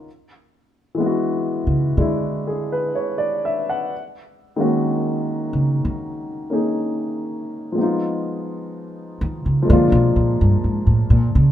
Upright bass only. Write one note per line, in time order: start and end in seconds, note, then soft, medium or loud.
1.67 1.97 C#3 medium
1.97 2.90 D3 medium
5.53 5.83 C#3 medium
5.85 6.77 D#3 medium
9.21 9.44 D#3 medium
9.46 9.64 C#3 medium
9.70 9.91 D3 medium
9.92 10.15 B2 medium
10.16 10.39 A#2 medium
10.41 10.59 G2 medium
10.64 10.86 G#2 medium
10.87 11.10 A2 medium
11.10 11.33 A#2 medium
11.35 11.52 C#3 medium